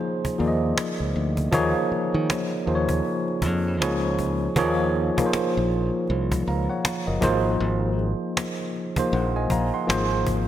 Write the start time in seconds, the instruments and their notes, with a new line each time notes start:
Already playing: tine electric piano F3 A#3 D#4 G#4 C5 C#5
0.01 cajon slap
0.24 cajon bass, cajon slap
0.39 fingered electric bass D#2, tine electric piano F3 A#3 D#4 G#4 D5, cajon slap
0.48 tine electric piano D#5
0.78 cajon slap
1.00 fingered electric bass C#2
1.13 fingered electric bass D2, cajon slap
1.37 cajon bass
1.52 fingered electric bass D#2, tine electric piano F3 A#3 D#4 G#4 C#5, cajon bass
1.92 muted fingered electric bass stroke, cajon slap
2.14 fingered electric bass D#3
2.30 cajon slap
2.66 fingered electric bass D#2, tine electric piano F3 A#3 D#4 G#4 C5, cajon slap
2.75 tine electric piano C#5
2.89 cajon bass
3.05 cajon slap
3.28 cajon slap
3.42 fingered electric bass F2, cajon bass
3.65 cajon slap
3.80 fingered electric bass C#2, tine electric piano F3 A#3 D#4 G#4 C#5, cajon slap
4.04 cajon slap
4.19 cajon bass
4.56 fingered electric bass D#2, tine electric piano F3 A#3 D#4 G#4 C#5, cajon bass
4.95 cajon slap
5.17 tine electric piano F3 A#3 D#4 G#4 A#4, cajon bass
5.26 tine electric piano C5
5.33 muted fingered electric bass stroke, cajon slap
5.56 fingered electric bass A#1, cajon slap
5.72 cajon slap
6.07 fingered electric bass C2, cajon slap
6.31 cajon bass, cajon slap
6.46 fingered electric bass C#2, tine electric piano F5 A#5, cajon slap
6.70 tine electric piano C#5 F#5
6.85 cajon slap
7.07 fingered electric bass F#1, tine electric piano A#4 D#5
7.21 fingered electric bass G#1, tine electric piano F3 A#3 D#4 G#4 C5, cajon bass
7.60 fingered electric bass G#1, cajon slap
7.99 cajon slap
8.37 cajon slap
8.60 cajon slap
8.76 cajon slap
8.96 tine electric piano F3 A#3 D#4 G#4 C5, cajon bass
9.12 fingered electric bass A#1, tine electric piano C5 F#5, cajon slap
9.36 tine electric piano D#5 G#5, cajon slap
9.50 fingered electric bass A#1, tine electric piano F5 A#5, cajon bass
9.74 tine electric piano F#5 C6
9.87 fingered electric bass G#1, tine electric piano F3 A#3 D#4 G#4 C5, cajon slap
10.26 cajon bass